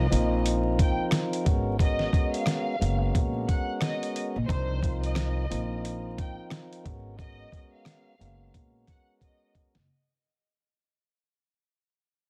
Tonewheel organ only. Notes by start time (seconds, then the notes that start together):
0.10 F3 C4 D#4 F4 A#4
1.44 G#3 B3 C#4 F#4 A#4
1.79 G#3 B3 C#4 F#4 A#4
2.12 G#3 B3 C#4 F#4 A#4
2.79 G#3 B3 C#4 F#4 A#4
4.47 F3 C4 D4 D#4 A#4
4.82 F3 C4 D#4 F4 A#4
5.49 F3 C4 D#4 F4 A#4
6.84 G#3 B3 C#4 F#4 A#4
7.18 G#3 B3 C#4 F#4 A#4
7.51 G#3 B3 C#4 F#4 A#4
8.18 G#3 B3 C#4 F#4 A#4